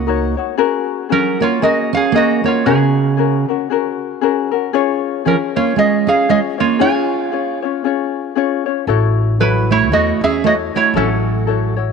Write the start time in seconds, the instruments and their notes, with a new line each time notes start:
Already playing: upright bass C#2, steel-string acoustic guitar A#3, resonator guitar played with a steel bar F#4 D#5
0.07 ukulele D#4 F#4 A#4 C#5
0.37 ukulele D#4 F#4 C#5
0.57 ukulele C#4 F#4 G#4 A#4
1.09 steel-string acoustic guitar F#3, ukulele C#4 F#4 G#4 A#4, resonator guitar played with a steel bar C#4 A#4
1.40 steel-string acoustic guitar A#3, ukulele C#4 F#4 A#4, resonator guitar played with a steel bar F4 C#5
1.61 steel-string acoustic guitar A#3, ukulele C#4 F#4 G#4 A#4, resonator guitar played with a steel bar F#4 D#5
1.93 steel-string acoustic guitar C#4, resonator guitar played with a steel bar G#4 F5
2.12 steel-string acoustic guitar A#3, ukulele C#4 F#4 G#4 A#4, resonator guitar played with a steel bar D#5
2.17 resonator guitar played with a steel bar F#4
2.44 steel-string acoustic guitar A#3, ukulele C#4 F#4 A#4, resonator guitar played with a steel bar F4 C#5
2.66 steel-string acoustic guitar C#3, ukulele C#4 F#4 G#4 A#4, resonator guitar played with a steel bar C#4 G#4
3.17 ukulele C#4 F#4 G#4 A#4
3.48 ukulele C#4 F#4 A#4
3.70 ukulele C#4 F#4 G#4 A#4
4.21 ukulele C#4 F#4 G#4 A#4
4.51 ukulele C#4 F#4 A#4
4.73 ukulele C#4 F4 G#4 C#5
5.25 steel-string acoustic guitar F3, ukulele C#4 F4 G#4 C#5, resonator guitar played with a steel bar C#4 A#4
5.56 steel-string acoustic guitar A#3, ukulele C#4 F4 C#5, resonator guitar played with a steel bar F4 C#5
5.76 steel-string acoustic guitar G#3, ukulele C#4 F4 G#4 C#5, resonator guitar played with a steel bar G#4 D#5
6.07 steel-string acoustic guitar C#4, resonator guitar played with a steel bar G#4 F5
6.28 steel-string acoustic guitar G#3, ukulele C#4 F4 G#4 C#5, resonator guitar played with a steel bar G#4 D#5
6.58 steel-string acoustic guitar A#3, ukulele C#4 F4 C#5, resonator guitar played with a steel bar F4 C#5
6.79 ukulele C#4 F4 G#4 C#5, steel-string acoustic guitar F4, resonator guitar played with a steel bar C#5 G#5
7.31 ukulele C#4 F4 G#4 C#5
7.62 ukulele C#4 F4 C#5
7.84 ukulele C#4 F4 G#4 C#5
8.35 ukulele C#4 F4 G#4 C#5
8.66 ukulele C#4 F4 C#5
8.87 upright bass A1, ukulele E4 F#4 A4 C#5
9.40 steel-string acoustic guitar F#3, ukulele E4 F#4 A4 C#5, resonator guitar played with a steel bar E4 B4
9.71 steel-string acoustic guitar A3, resonator guitar played with a steel bar E4 C#5, ukulele E4 F#4 C#5
9.90 upright bass E2, steel-string acoustic guitar A3, ukulele E4 F#4 A4 C#5, resonator guitar played with a steel bar F#4 D#5
10.21 upright bass E2, steel-string acoustic guitar C#4, resonator guitar played with a steel bar G#4 E5
10.44 steel-string acoustic guitar A3, ukulele E4 F#4 A4 C#5, resonator guitar played with a steel bar F#4 D#5
10.74 steel-string acoustic guitar A3, resonator guitar played with a steel bar E4 C#5, ukulele E4 F#4 C#5
10.94 upright bass A1, steel-string acoustic guitar F#3, resonator guitar played with a steel bar C#4 A4, ukulele E4 F#4 A4 C#5
11.47 ukulele E4 F#4 A4 C#5
11.76 ukulele E4 F#4 C#5